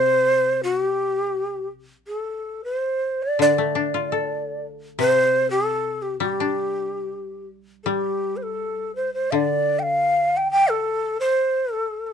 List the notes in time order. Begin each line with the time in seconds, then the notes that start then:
Already playing: C3 C5
0.64 F#4
0.82 G4
2.07 A4
2.64 B4
2.75 C5
3.23 D5
3.39 D3 D5
3.58 A3
3.75 D4
3.94 F4
4.12 A4
4.99 C3 C5
5.51 A4
6.02 G4
6.20 G3 G4
6.40 D4
7.84 G3 A4
7.88 G4
8.37 C5
8.43 A4
8.96 C5
9.14 C5
9.31 D3 D5 F5
9.79 F5 G5
10.37 G5
10.51 G5
10.70 A4
11.20 C5
11.73 A4
12.06 A4